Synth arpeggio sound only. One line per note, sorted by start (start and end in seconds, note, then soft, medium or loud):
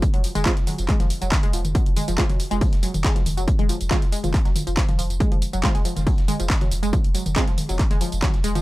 0.14 0.20 F#3 medium
0.35 0.42 G#3 loud
0.46 0.53 F3 medium
0.67 0.74 F#3 medium
0.89 0.96 G#3 loud
1.00 1.07 F3 medium
1.22 1.28 F#3 medium
1.43 1.50 G#3 loud
1.53 1.61 F3 medium
1.75 1.82 F#3 medium
1.97 2.04 G#3 loud
2.08 2.15 F3 medium
2.29 2.36 F#3 medium
2.51 2.58 G#3 loud
2.61 2.69 F3 medium
2.83 2.90 F#3 medium
3.04 3.12 G#3 loud
3.16 3.22 F3 medium
3.37 3.44 F#3 medium
3.59 3.66 G#3 loud
3.69 3.77 F3 medium
3.91 3.98 F#3 medium
4.12 4.20 G#3 loud
4.24 4.30 F3 medium
4.45 4.52 F#3 medium
4.67 4.74 F3 medium
4.77 4.82 F3 loud
4.88 4.97 F3 medium
4.99 5.09 F3 medium
5.20 5.28 G#3 loud
5.32 5.38 F3 medium
5.53 5.60 F#3 medium
5.75 5.81 G#3 loud
5.85 5.92 F3 medium
6.07 6.14 F#3 medium
6.28 6.36 G#3 loud
6.40 6.46 F3 medium
6.61 6.68 F#3 medium
6.83 6.89 G#3 loud
6.93 7.00 F3 medium
7.15 7.22 F#3 medium
7.36 7.44 G#3 loud
7.47 7.54 F3 medium
7.69 7.76 F#3 medium
7.91 7.97 G#3 loud
8.01 8.08 F3 medium
8.23 8.30 F#3 medium
8.44 8.51 G#3 loud
8.55 8.62 F3 medium